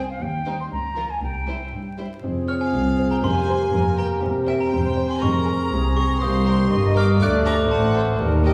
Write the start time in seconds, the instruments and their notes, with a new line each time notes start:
0.10 flute F5
0.21 cello section D#2, double bass section D#2, flute G5
0.46 viola section G3, violin section D#4 C5
0.60 flute C6
0.71 cello section C#2, double bass section C#2, flute A#5
0.96 viola section F3, violin section F4 A#4
1.10 flute G#5
1.21 cello section C2, double bass section C2, flute G5
1.47 viola section G3, violin section E4 C5
1.72 cello section G2
1.98 viola section G3, violin section E4 C5
2.23 double bass section F1, cello section F2, french horn section C4 G#4, bassoon C4, clarinet F4, viola section G#4
2.48 violin section C5 C#5, glockenspiel F6
2.61 violin section F5, glockenspiel G#5
2.73 cello section C2, double bass section C2
2.99 violin section C5
3.11 violin section G5, glockenspiel A#5
3.22 double bass section F1, cello section F2, french horn section A#3 G4, bassoon A#3, clarinet G4, viola section C5, violin section G#5, glockenspiel C6
3.48 violin section A#4
3.72 double bass section F1, cello section F2, viola section A#4
3.98 violin section A#4 G5, glockenspiel A#5
4.22 double bass section E1, cello section E2, bassoon C4, french horn section C4
4.47 violin section C5 E5, glockenspiel G5
4.61 violin section G5, glockenspiel A#5
4.72 double bass section E1, cello section E2, viola section C5
4.98 violin section C5
5.10 violin section G#5, glockenspiel C6
5.22 double bass section F1, cello section F2, french horn section G#4, clarinet G#4, viola section A#4, violin section A#5, glockenspiel C#6
5.48 violin section G#4
5.72 double bass section C2, cello section C2, viola section G#4
5.97 violin section G#4 A#5, glockenspiel C#6
6.21 double bass section C2, cello section C2, bassoon A#3, french horn section A#3 G4, clarinet G4, viola section C5, violin section C6, glockenspiel D#6
6.46 violin section A#4
6.71 double bass section G1, cello section G2, viola section D#5
6.96 violin section A#4 D6, glockenspiel F6
7.20 cello section D2, double bass section D2, bassoon A3, french horn section A3 A4, clarinet A4, viola section D5, violin section D6, glockenspiel F#6
7.45 violin section A4 A#5, glockenspiel D6
7.70 double bass section A1, cello section A2, viola section C5, violin section F#5, glockenspiel A5
7.95 violin section A4
8.19 double bass section D#2, cello section D#2, bassoon G3, french horn section A#3 G4, clarinet A#4, viola section A#4
8.45 violin section G4 D#5, glockenspiel G5